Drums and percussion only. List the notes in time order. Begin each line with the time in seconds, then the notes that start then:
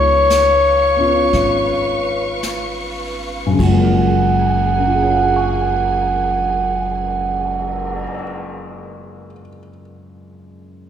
0.30 snare, hi-hat pedal
1.33 brush sweep, snare
2.43 snare, hi-hat pedal
3.59 kick, ride
4.39 cymbal swell